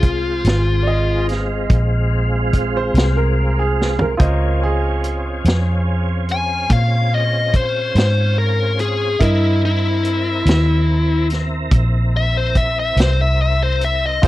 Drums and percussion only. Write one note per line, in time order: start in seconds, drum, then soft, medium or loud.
0.03 kick medium
0.03 closed hi-hat medium
0.45 snare medium
0.45 closed hi-hat medium
1.29 snare soft
1.29 closed hi-hat soft
1.70 kick medium
1.70 closed hi-hat medium
2.53 kick medium
2.53 closed hi-hat medium
2.95 snare medium
2.95 closed hi-hat medium
3.81 snare medium
3.99 floor tom medium
4.20 kick loud
4.20 closed hi-hat medium
5.04 closed hi-hat medium
5.45 snare loud
5.45 closed hi-hat medium
6.29 closed hi-hat medium
6.70 kick medium
6.70 closed hi-hat medium
7.54 kick medium
7.54 closed hi-hat medium
7.95 snare medium
7.95 closed hi-hat medium
8.79 closed hi-hat medium
9.21 kick loud
9.21 closed hi-hat medium
10.04 closed hi-hat medium
10.46 snare loud
10.46 closed hi-hat medium
11.30 snare soft
11.30 closed hi-hat medium
11.71 kick loud
11.71 closed hi-hat medium
12.55 kick medium
12.55 closed hi-hat medium
12.97 snare medium
12.97 closed hi-hat medium
13.81 closed hi-hat medium
14.23 kick loud
14.23 closed hi-hat medium